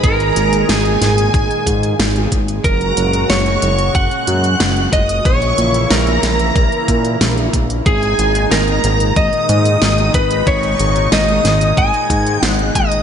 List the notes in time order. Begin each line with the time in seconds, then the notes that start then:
Already playing: A#2 D#3 G#3 G#4
0.04 G#1 A#4 A#5, kick, closed hi-hat
0.20 closed hi-hat
0.36 G#1, closed hi-hat
0.53 closed hi-hat
0.69 G#1 G#4 G#5, snare, closed hi-hat
0.85 closed hi-hat
1.02 G#1, snare, closed hi-hat
1.18 closed hi-hat
1.34 G#1, kick, closed hi-hat
1.51 closed hi-hat
1.67 G#2, kick, closed hi-hat
1.83 closed hi-hat
1.99 G#1, snare, closed hi-hat
2.16 closed hi-hat
2.32 G#1, kick, closed hi-hat
2.48 closed hi-hat
2.64 F#1 C#3 G#3 F#4 A#4 A#5, kick, closed hi-hat
2.81 closed hi-hat
2.97 F#1, closed hi-hat
3.13 closed hi-hat
3.30 F#1 C#5 C#6, snare, closed hi-hat
3.46 closed hi-hat
3.62 F#1, closed hi-hat
3.78 closed hi-hat
3.95 F#1 F#5 F#6, kick, closed hi-hat
4.11 closed hi-hat
4.27 F#2, closed hi-hat
4.44 closed hi-hat
4.60 F#1, snare, closed hi-hat
4.77 closed hi-hat
4.93 F#1 D#5 D#6, kick, closed hi-hat
5.09 closed hi-hat
5.25 A#1 E3 A#3 E4 C#5 C#6, kick, closed hi-hat
5.42 closed hi-hat
5.58 A#1, closed hi-hat
5.74 closed hi-hat
5.91 A#1 A#4 A#5, snare, closed hi-hat
6.07 closed hi-hat
6.23 A#1, snare, closed hi-hat
6.39 closed hi-hat
6.56 A#1, kick, closed hi-hat
6.72 closed hi-hat
6.88 A#2, kick, closed hi-hat
7.05 closed hi-hat
7.21 A#1, snare, closed hi-hat
7.37 closed hi-hat
7.53 A#1, kick, closed hi-hat
7.70 closed hi-hat
7.86 G#1 A#2 D#3 G#3 D#4 G#4 G#5, kick, closed hi-hat
8.03 closed hi-hat
8.19 G#1, closed hi-hat
8.35 closed hi-hat
8.51 G#1 A#4 A#5, snare, closed hi-hat
8.68 closed hi-hat
8.84 G#1, closed hi-hat
9.00 closed hi-hat
9.16 G#1 D#5 D#6, kick, closed hi-hat
9.33 closed hi-hat
9.49 G#2, closed hi-hat
9.65 closed hi-hat
9.82 G#1, snare, closed hi-hat
9.98 closed hi-hat
10.14 G#1 B4 B5, kick, closed hi-hat
10.31 closed hi-hat
10.47 G#1 C#5 C#6, kick, closed hi-hat
10.63 closed hi-hat
10.79 G#1, closed hi-hat
10.96 closed hi-hat
11.12 G#1 D#5 D#6, snare, closed hi-hat
11.28 closed hi-hat
11.45 G#1, snare, closed hi-hat
11.61 closed hi-hat
11.77 G#1 G#5 G#6, kick, closed hi-hat
11.94 closed hi-hat
12.10 G#2, kick, closed hi-hat
12.27 closed hi-hat
12.43 G#1 F#5 F#6, snare, closed hi-hat
12.59 closed hi-hat
12.75 G#1 D#5 D#6, kick, closed hi-hat
12.92 closed hi-hat